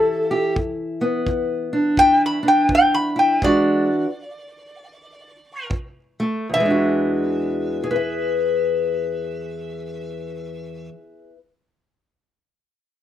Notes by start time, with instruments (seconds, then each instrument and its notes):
Already playing: steel-string acoustic guitar A2 E3 C#4 E4 G4, resonator guitar played with a steel bar A4
0.31 steel-string acoustic guitar G4
0.56 steel-string acoustic guitar E2, kick
1.01 steel-string acoustic guitar B3
1.26 steel-string acoustic guitar E2, kick
1.73 steel-string acoustic guitar D4
1.97 steel-string acoustic guitar E2 E4, resonator guitar played with a steel bar G5, kick
2.26 resonator guitar played with a steel bar B5
2.43 steel-string acoustic guitar D4
2.48 resonator guitar played with a steel bar G5
2.69 steel-string acoustic guitar E2, kick
2.75 resonator guitar played with a steel bar G5
2.94 resonator guitar played with a steel bar B5
3.16 steel-string acoustic guitar E4, resonator guitar played with a steel bar G5
3.42 steel-string acoustic guitar E2 E3 G#3 D4 F#4, resonator guitar played with a steel bar D5, kick
5.70 steel-string acoustic guitar F2, kick
6.20 steel-string acoustic guitar A3
6.49 steel-string acoustic guitar E2
6.54 steel-string acoustic guitar E3, resonator guitar played with a steel bar E5
6.60 steel-string acoustic guitar G#3
6.65 steel-string acoustic guitar D4
6.70 steel-string acoustic guitar F#4
7.84 steel-string acoustic guitar G#4
7.91 steel-string acoustic guitar B4
7.96 steel-string acoustic guitar E5